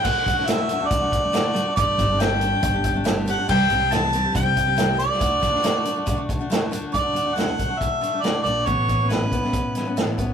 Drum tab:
CC |x---------------|----------------|x---------------|----------------|
HH |--x-x-x-x-x-x-x-|x-x-x-x-x-x-x-x-|--x-x-x-x-x-x-x-|x-x-x-x-x-x-x-x-|
SD |---oo-------o---|----o-------o---|----o-------o--o|---oo-------o---|
BD |o-o-----o-o-----|o-o-----o-o-----|o-o-----o-o-----|o-o-----o-o-----|

CC |----------------|----------------|
HH |x-x-x-x-x-x-x-x-|x-x-x-x-x-x-x-x-|
SD |----o-------o---|----o--o--o-o---|
BD |o-----o-o-------|o-o---o-o-----o-|